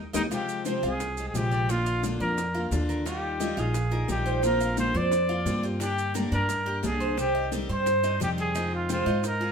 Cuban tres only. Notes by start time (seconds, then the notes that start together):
0.13 G4 A#4 D#5
0.31 F4
0.65 C5
0.83 F4
1.51 D5
1.86 F5
2.20 D5
2.54 F4
2.89 A#4
3.06 F4
3.40 D#5
3.57 F4
3.92 A#4
4.26 C5
4.60 F5
4.94 C5
5.29 F4
5.63 G4
5.80 D4
6.15 A#4
6.32 D4
6.66 G4
7.00 C5
7.35 D#5
7.69 C5
8.04 D#4
8.38 G#4
8.55 D#4
8.89 C5
9.06 D#4
9.41 G#4